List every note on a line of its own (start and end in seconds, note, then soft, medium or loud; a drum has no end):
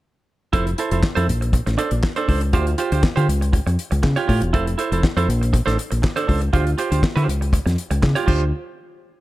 0.53 0.73 F1 medium
0.53 0.69 E4 medium
0.53 0.66 A4 medium
0.53 0.65 C5 medium
0.53 kick loud
0.53 closed hi-hat medium
0.67 muted clean electric guitar stroke soft
0.67 closed hi-hat soft
0.78 0.91 E4 medium
0.78 0.91 A4 medium
0.78 0.90 C5 medium
0.78 closed hi-hat medium
0.91 1.01 F1 medium
0.91 1.02 E4 medium
0.91 1.03 A4 medium
0.91 1.03 C5 medium
0.91 closed hi-hat soft
1.03 muted clean electric guitar stroke soft
1.03 muted fingered electric bass stroke soft
1.03 kick loud
1.03 snare loud
1.03 clap medium
1.15 1.30 F2 medium
1.15 1.28 E4 medium
1.15 1.27 A4 medium
1.15 1.28 C5 medium
1.15 closed hi-hat soft
1.28 1.59 A#1 medium
1.28 muted clean electric guitar stroke soft
1.28 closed hi-hat medium
1.41 muted clean electric guitar stroke soft
1.41 closed hi-hat soft
1.53 muted clean electric guitar stroke soft
1.53 kick loud
1.53 closed hi-hat medium
1.66 1.76 A1 medium
1.66 muted clean electric guitar stroke medium
1.66 snare soft
1.66 closed hi-hat soft
1.78 1.94 D4 medium
1.78 1.91 A4 medium
1.78 1.90 C5 medium
1.78 closed hi-hat medium
1.91 2.01 A#1 medium
1.91 muted clean electric guitar stroke soft
1.91 closed hi-hat soft
2.03 muted clean electric guitar stroke soft
2.03 kick loud
2.03 snare medium
2.03 clap medium
2.16 2.27 D4 medium
2.16 2.27 A4 medium
2.16 2.28 C5 medium
2.16 closed hi-hat soft
2.28 2.54 C#2 loud
2.28 2.41 D4 medium
2.28 2.41 A4 medium
2.28 2.41 C5 medium
2.28 kick medium
2.28 open hi-hat medium
2.41 muted clean electric guitar stroke soft
2.41 closed hi-hat medium
2.53 2.74 D2 loud
2.53 2.69 F4 medium
2.53 2.66 G4 loud
2.53 2.66 C5 loud
2.53 kick loud
2.53 closed hi-hat medium
2.67 muted clean electric guitar stroke soft
2.67 closed hi-hat soft
2.78 2.91 F4 medium
2.78 2.92 G4 medium
2.78 2.91 C5 medium
2.78 closed hi-hat medium
2.92 3.01 D2 loud
2.92 3.03 F4 soft
2.92 3.03 G4 medium
2.92 3.03 C5 medium
2.92 closed hi-hat soft
3.03 kick loud
3.03 snare medium
3.03 clap medium
3.16 3.26 D3 medium
3.16 3.27 F4 medium
3.16 3.28 G4 medium
3.16 3.29 C5 medium
3.16 closed hi-hat soft
3.28 3.59 C#2 loud
3.28 muted clean electric guitar stroke soft
3.28 closed hi-hat medium
3.41 muted clean electric guitar stroke soft
3.41 closed hi-hat soft
3.53 muted clean electric guitar stroke soft
3.53 kick loud
3.53 closed hi-hat medium
3.66 3.76 F2 medium
3.66 muted clean electric guitar stroke medium
3.66 closed hi-hat soft
3.79 closed hi-hat medium
3.91 4.01 C#2 medium
3.91 muted clean electric guitar stroke soft
3.91 closed hi-hat soft
4.03 4.15 C#3 loud
4.03 muted clean electric guitar stroke soft
4.03 kick loud
4.03 snare medium
4.03 clap medium
4.16 4.26 F4 medium
4.16 4.27 G4 medium
4.16 4.28 C#5 medium
4.16 closed hi-hat soft
4.28 4.40 A2 loud
4.28 4.41 F4 medium
4.28 4.41 G4 medium
4.28 4.40 C#5 medium
4.28 kick medium
4.28 open hi-hat medium
4.41 4.54 E1 medium
4.41 muted clean electric guitar stroke soft
4.41 closed hi-hat medium
4.53 4.74 F1 loud
4.53 4.69 E4 medium
4.53 4.67 A4 loud
4.53 4.65 C5 loud
4.53 kick loud
4.53 closed hi-hat medium
4.67 muted clean electric guitar stroke soft
4.67 closed hi-hat soft
4.78 4.91 E4 medium
4.78 4.92 A4 medium
4.78 4.90 C5 medium
4.78 closed hi-hat medium
4.92 5.01 F1 loud
4.92 5.02 E4 soft
4.92 5.03 A4 medium
4.92 5.03 C5 medium
4.92 closed hi-hat soft
5.03 muted clean electric guitar stroke medium
5.03 kick loud
5.03 snare loud
5.03 clap medium
5.17 5.26 F2 medium
5.17 5.28 E4 medium
5.17 5.28 A4 medium
5.17 5.29 C5 medium
5.17 closed hi-hat soft
5.28 5.59 A#1 loud
5.28 closed hi-hat medium
5.41 muted clean electric guitar stroke soft
5.41 closed hi-hat soft
5.53 muted clean electric guitar stroke medium
5.53 kick loud
5.53 closed hi-hat medium
5.66 5.76 A1 medium
5.66 5.76 D4 medium
5.66 5.77 A4 medium
5.66 5.77 C5 medium
5.66 snare soft
5.66 closed hi-hat soft
5.77 muted clean electric guitar stroke soft
5.77 closed hi-hat medium
5.91 6.01 A#1 medium
5.91 muted clean electric guitar stroke soft
5.91 closed hi-hat medium
6.02 muted clean electric guitar stroke soft
6.02 kick loud
6.02 snare medium
6.02 clap medium
6.16 6.26 D4 medium
6.16 6.27 A4 medium
6.16 6.28 C5 medium
6.16 closed hi-hat soft
6.27 6.49 C#2 loud
6.27 6.41 D4 medium
6.27 6.41 A4 medium
6.27 6.40 C5 medium
6.27 kick medium
6.27 open hi-hat medium
6.41 muted clean electric guitar stroke soft
6.41 closed hi-hat medium
6.53 6.73 D2 loud
6.53 6.69 F4 medium
6.53 6.66 G4 loud
6.53 6.65 C5 loud
6.53 kick loud
6.53 closed hi-hat medium
6.66 muted clean electric guitar stroke soft
6.66 closed hi-hat soft
6.78 6.91 F4 medium
6.78 6.90 G4 medium
6.78 6.89 C5 medium
6.78 closed hi-hat medium
6.91 7.01 D2 loud
6.91 7.02 F4 medium
6.91 7.03 G4 medium
6.91 7.02 C5 medium
6.91 closed hi-hat medium
7.03 kick loud
7.03 snare loud
7.03 clap medium
7.16 7.26 D3 medium
7.16 7.27 F4 medium
7.16 7.27 G4 medium
7.16 7.28 C5 loud
7.16 closed hi-hat soft
7.28 7.58 C#2 medium
7.28 muted clean electric guitar stroke soft
7.28 closed hi-hat medium
7.41 muted clean electric guitar stroke soft
7.41 closed hi-hat soft
7.53 muted clean electric guitar stroke soft
7.53 kick loud
7.53 closed hi-hat medium
7.66 7.76 F2 loud
7.66 muted clean electric guitar stroke soft
7.66 snare soft
7.66 closed hi-hat soft
7.78 closed hi-hat medium
7.91 8.00 C#2 medium
7.91 muted clean electric guitar stroke medium
7.91 closed hi-hat soft
8.02 8.14 C#3 loud
8.02 muted clean electric guitar stroke soft
8.02 kick loud
8.02 snare medium
8.02 clap medium
8.15 8.25 F4 medium
8.15 8.26 G4 medium
8.15 8.27 C#5 medium
8.15 closed hi-hat soft
8.26 8.51 D2 loud
8.26 8.42 F4 medium
8.26 8.43 G4 medium
8.26 8.43 C5 medium
8.26 kick loud
8.26 crash medium